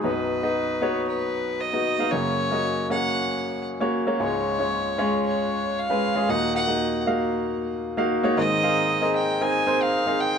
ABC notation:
X:1
M:4/4
L:1/16
Q:1/4=115
K:Blyd
V:1 name="Fiddle"
B8 B4 d4 | c6 f6 z4 | c8 c4 e4 | f2 f4 z8 z2 |
[K:Ab] e6 g2 a3 f3 g2 |]
V:2 name="Grand piano"
[B,DFcd]3 [B,DFd]3 [B,DFc]6- [B,DFc] [B,DFd]2 [B,DFe] | [A,CFc]3 [A,CFd]3 [A,CFc]6- [A,CFc] [A,CFc]2 [A,CFc] | [G,CEc]3 [G,CEc]3 [G,CEc]6- [G,CEc] [G,CEB]2 [G,CEG] | [A,DFd]3 [A,DFd]3 [A,DFe]6- [A,DFe] [A,DFe]2 [A,DFc] |
[K:Ab] [CEABe]2 [CEABf]3 [CEABe]3 [CEABe]2 [CEABc]3 [CEABf]3 |]
V:3 name="Grand piano" clef=bass
[B,,,F,,]16 | [F,,C,]16 | [C,,G,,]16 | [D,,A,,]16 |
[K:Ab] [A,,E,]16 |]